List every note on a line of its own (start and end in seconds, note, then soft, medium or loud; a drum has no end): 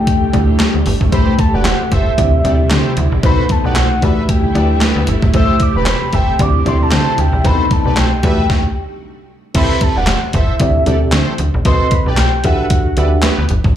0.00 1.12 D3 medium
0.00 1.12 G3 medium
0.00 0.24 A3 medium
0.00 2.16 A3 medium
0.00 0.24 E4 medium
0.00 0.25 G4 medium
0.00 1.12 G4 medium
0.00 0.25 D5 medium
0.00 0.87 G5 loud
0.07 kick loud
0.07 closed hi-hat loud
0.07 muted conga soft
0.33 0.54 D2 medium
0.33 0.69 A3 medium
0.33 0.69 E4 medium
0.33 0.69 G4 medium
0.33 0.69 D5 medium
0.33 kick medium
0.33 closed hi-hat medium
0.33 muted conga medium
0.60 snare loud
0.60 clap medium
0.60 closed hi-hat loud
0.60 high conga medium
0.74 0.83 D2 medium
0.86 0.98 G1 loud
0.86 open hi-hat medium
0.86 high conga medium
1.01 1.10 G#1 medium
1.01 kick medium
1.12 1.24 A1 medium
1.12 4.00 C3 medium
1.12 1.59 A3 medium
1.12 1.59 E4 medium
1.12 1.59 G4 medium
1.12 1.34 G4 loud
1.12 2.17 G4 medium
1.12 1.34 A4 medium
1.12 1.34 C5 loud
1.12 1.60 C5 medium
1.12 1.41 B5 loud
1.12 kick loud
1.12 closed hi-hat medium
1.12 muted conga soft
1.39 1.56 A5 medium
1.39 kick loud
1.39 closed hi-hat medium
1.39 muted conga medium
1.53 1.74 E1 medium
1.53 1.63 G4 medium
1.53 1.63 B4 medium
1.53 1.63 D5 loud
1.53 1.65 F#5 loud
1.65 1.77 G4 loud
1.65 1.77 A4 loud
1.65 1.77 C5 loud
1.65 1.87 F#5 loud
1.65 snare loud
1.65 clap medium
1.65 closed hi-hat loud
1.65 high conga medium
1.87 1.95 F#5 medium
1.92 2.12 G1 loud
1.92 2.13 A4 loud
1.92 2.13 C5 medium
1.92 2.13 E5 loud
1.92 2.98 E5 medium
1.92 kick medium
1.92 closed hi-hat medium
2.18 2.38 D2 loud
2.18 3.23 G3 medium
2.18 2.40 C4 medium
2.18 2.40 E4 medium
2.18 3.23 E4 medium
2.18 2.40 G4 medium
2.18 2.40 D5 medium
2.18 kick loud
2.18 closed hi-hat loud
2.44 2.64 D2 medium
2.44 2.80 C4 medium
2.44 2.80 E4 medium
2.44 2.80 G4 medium
2.44 2.57 G4 medium
2.44 2.56 A4 medium
2.44 2.56 D5 medium
2.44 2.80 D5 medium
2.44 closed hi-hat medium
2.44 muted conga medium
2.44 low conga medium
2.70 2.82 D3 loud
2.70 2.92 G4 loud
2.70 2.92 A4 medium
2.70 2.92 C5 loud
2.70 snare loud
2.70 clap medium
2.70 closed hi-hat loud
2.70 high conga medium
2.97 3.08 D2 loud
2.97 closed hi-hat medium
2.97 high conga medium
3.12 3.21 A#1 loud
3.23 3.34 B1 loud
3.23 4.02 A3 medium
3.23 3.70 B3 medium
3.23 3.70 D#4 medium
3.23 4.02 D#4 loud
3.23 3.45 F#4 loud
3.23 3.70 A4 medium
3.23 3.45 A4 loud
3.23 3.70 C5 medium
3.23 3.45 C5 loud
3.23 3.53 B5 loud
3.23 kick loud
3.23 closed hi-hat medium
3.23 muted conga soft
3.49 3.65 A5 loud
3.49 kick medium
3.49 closed hi-hat medium
3.49 muted conga medium
3.64 3.84 B1 medium
3.64 3.74 G4 medium
3.64 3.74 B4 medium
3.64 3.74 D5 medium
3.64 4.05 F#5 loud
3.75 3.88 F#4 loud
3.75 3.88 A4 loud
3.75 3.88 C5 loud
3.75 snare loud
3.75 clap loud
3.75 closed hi-hat medium
3.75 high conga medium
4.02 4.23 E2 loud
4.02 5.33 D3 medium
4.02 5.33 G3 medium
4.02 4.45 A3 medium
4.02 6.37 A3 medium
4.02 5.33 E4 medium
4.02 4.46 F#4 medium
4.02 4.46 G4 medium
4.02 4.24 A4 loud
4.02 4.23 B4 medium
4.02 4.46 D5 medium
4.02 4.24 E5 loud
4.02 4.31 B5 loud
4.02 kick medium
4.02 closed hi-hat medium
4.29 5.08 G5 medium
4.29 kick loud
4.29 closed hi-hat loud
4.29 muted conga soft
4.55 4.75 D2 loud
4.55 4.90 A3 medium
4.55 4.90 E4 medium
4.55 4.90 G4 medium
4.55 4.68 A4 medium
4.55 4.67 B4 medium
4.55 4.91 D5 medium
4.55 4.67 D5 medium
4.55 closed hi-hat medium
4.55 muted conga medium
4.81 5.03 B3 loud
4.81 5.03 G4 loud
4.81 5.03 B4 loud
4.81 snare loud
4.81 clap medium
4.81 closed hi-hat loud
4.81 high conga medium
4.96 5.05 D2 loud
5.07 5.19 G1 loud
5.07 closed hi-hat medium
5.07 high conga medium
5.22 5.31 G#1 medium
5.22 kick medium
5.34 5.45 A1 loud
5.34 8.21 C3 medium
5.34 5.81 A3 medium
5.34 5.81 E4 medium
5.34 6.38 G4 loud
5.34 5.81 G4 medium
5.34 5.56 G4 loud
5.34 5.56 A4 loud
5.34 5.81 C5 medium
5.34 5.56 C5 loud
5.34 5.63 E6 loud
5.34 kick loud
5.34 closed hi-hat medium
5.34 muted conga soft
5.60 5.76 D6 loud
5.60 kick medium
5.60 closed hi-hat medium
5.60 muted conga medium
5.75 5.95 E1 medium
5.75 5.85 G4 medium
5.75 5.85 B4 medium
5.75 5.85 D5 loud
5.75 5.87 B5 loud
5.86 5.99 G4 medium
5.86 5.99 A4 loud
5.86 5.99 C5 loud
5.86 6.16 B5 loud
5.86 snare loud
5.86 clap loud
5.86 closed hi-hat medium
5.86 high conga medium
6.13 6.33 G1 medium
6.13 6.34 A4 loud
6.13 6.35 C5 medium
6.13 6.34 E5 loud
6.13 6.43 G5 medium
6.13 kick medium
6.13 closed hi-hat medium
6.39 6.59 D2 loud
6.39 7.44 G3 medium
6.39 6.61 C4 medium
6.39 7.43 E4 medium
6.39 6.61 E4 medium
6.39 6.61 G4 medium
6.39 6.61 D5 medium
6.39 6.66 D6 loud
6.39 kick loud
6.39 closed hi-hat loud
6.39 muted conga soft
6.65 6.86 D2 medium
6.65 7.01 C4 medium
6.65 7.01 E4 medium
6.65 6.77 G4 medium
6.65 7.01 G4 medium
6.65 6.78 A4 medium
6.65 6.77 D5 loud
6.65 7.01 D5 medium
6.65 6.84 C6 medium
6.65 closed hi-hat medium
6.65 muted conga medium
6.65 low conga medium
6.83 6.93 A5 medium
6.91 7.03 D3 loud
6.91 7.13 G4 loud
6.91 7.13 A4 loud
6.91 7.13 C5 loud
6.91 7.22 A5 medium
6.91 snare loud
6.91 clap medium
6.91 closed hi-hat loud
6.91 high conga medium
7.18 7.29 D2 medium
7.18 7.47 G5 loud
7.18 closed hi-hat medium
7.18 high conga medium
7.33 7.41 A#1 medium
7.44 7.56 B1 loud
7.44 8.49 A3 medium
7.44 7.91 B3 medium
7.44 8.22 D#4 medium
7.44 7.91 D#4 medium
7.44 7.65 F#4 loud
7.44 7.65 A4 loud
7.44 7.91 A4 medium
7.44 7.65 C5 loud
7.44 7.92 C5 medium
7.44 7.74 B5 loud
7.44 kick loud
7.44 closed hi-hat medium
7.44 muted conga soft
7.71 8.00 A5 medium
7.71 kick medium
7.71 closed hi-hat medium
7.71 muted conga medium
7.85 8.05 B1 medium
7.85 7.95 G4 medium
7.85 7.95 B4 medium
7.85 7.95 D5 loud
7.96 8.09 F#4 loud
7.96 8.09 A4 medium
7.96 8.09 C5 loud
7.96 9.30 G5 loud
7.96 snare loud
7.96 clap medium
7.96 closed hi-hat medium
7.96 high conga medium
8.23 8.43 E2 loud
8.23 8.45 A3 medium
8.23 8.45 F#4 medium
8.23 8.45 G4 medium
8.23 8.45 A4 medium
8.23 8.45 B4 loud
8.23 8.45 D5 medium
8.23 8.45 E5 loud
8.23 kick medium
8.23 closed hi-hat medium
8.50 kick loud
8.50 snare medium
9.54 9.66 A1 loud
9.54 10.01 C4 medium
9.54 10.02 E4 medium
9.54 10.02 G4 medium
9.54 9.76 G4 loud
9.54 10.02 A4 medium
9.54 9.76 A4 loud
9.54 9.76 C5 loud
9.54 10.02 E5 medium
9.54 9.84 B5 loud
9.54 kick loud
9.54 closed hi-hat medium
9.54 crash loud
9.54 muted conga soft
9.81 9.97 A5 loud
9.81 kick medium
9.81 closed hi-hat medium
9.81 muted conga medium
9.96 10.16 E1 medium
9.96 10.06 G4 medium
9.96 10.05 B4 medium
9.96 10.06 D5 loud
9.96 10.08 F#5 loud
10.07 10.20 G4 loud
10.07 10.20 A4 loud
10.07 10.20 C5 loud
10.07 10.21 F#5 loud
10.07 snare loud
10.07 clap medium
10.07 closed hi-hat loud
10.07 high conga medium
10.33 10.54 G1 loud
10.33 10.55 A4 loud
10.33 10.55 C5 medium
10.33 10.55 E5 loud
10.33 11.36 E5 loud
10.33 kick medium
10.33 closed hi-hat medium
10.60 10.80 D2 loud
10.60 10.82 C4 medium
10.60 10.82 E4 medium
10.60 10.82 G4 medium
10.60 10.82 A4 medium
10.60 10.82 D5 medium
10.60 kick loud
10.60 closed hi-hat loud
10.60 muted conga soft
10.86 11.06 D2 medium
10.86 11.22 C4 medium
10.86 11.22 E4 medium
10.86 11.22 G4 medium
10.86 10.98 G4 medium
10.86 11.22 A4 medium
10.86 10.98 A4 medium
10.86 10.98 D5 medium
10.86 11.22 D5 medium
10.86 closed hi-hat medium
10.86 muted conga medium
10.86 low conga medium
11.12 11.24 D3 medium
11.12 11.34 G4 loud
11.12 11.34 A4 loud
11.12 11.34 C5 loud
11.12 snare loud
11.12 clap medium
11.12 closed hi-hat loud
11.12 high conga medium
11.38 11.50 D2 medium
11.38 closed hi-hat medium
11.38 high conga medium
11.54 11.63 A#1 loud
11.65 11.77 B1 loud
11.65 12.12 C4 medium
11.65 12.12 F#4 medium
11.65 11.87 F#4 loud
11.65 12.12 A4 medium
11.65 11.87 A4 loud
11.65 12.12 B4 medium
11.65 11.87 C5 loud
11.65 12.12 D#5 medium
11.65 11.95 C6 loud
11.65 kick loud
11.65 closed hi-hat medium
11.65 muted conga soft
11.91 12.10 B5 loud
11.91 kick loud
11.91 closed hi-hat medium
11.91 muted conga medium
12.06 12.26 B1 medium
12.06 12.16 G4 medium
12.06 12.16 B4 medium
12.06 12.16 D5 loud
12.06 12.19 G5 medium
12.17 12.30 F#4 loud
12.17 12.30 A4 loud
12.17 12.30 C5 loud
12.17 12.44 G5 loud
12.17 snare loud
12.17 clap medium
12.17 closed hi-hat medium
12.17 high conga medium
12.44 12.65 E2 medium
12.44 12.88 D4 medium
12.44 12.88 F#4 medium
12.44 12.88 G4 medium
12.44 12.66 A4 loud
12.44 12.88 A4 medium
12.44 12.66 B4 medium
12.44 12.66 E5 loud
12.44 12.88 E5 medium
12.44 13.47 F#5 loud
12.44 kick medium
12.44 closed hi-hat medium
12.70 kick loud
12.70 closed hi-hat loud
12.97 13.17 D2 medium
12.97 13.33 D4 medium
12.97 13.33 F#4 medium
12.97 13.33 G4 medium
12.97 13.09 A4 medium
12.97 13.33 A4 medium
12.97 13.09 B4 medium
12.97 13.09 D5 loud
12.97 13.33 E5 medium
12.97 closed hi-hat medium
12.97 muted conga medium
13.22 13.45 B3 loud
13.22 13.45 G4 loud
13.22 13.45 B4 loud
13.22 snare loud
13.22 clap medium
13.22 closed hi-hat medium
13.22 high conga medium
13.39 13.47 D2 medium
13.49 13.61 G1 medium
13.49 closed hi-hat medium
13.49 high conga medium
13.64 13.73 G#1 loud
13.64 kick medium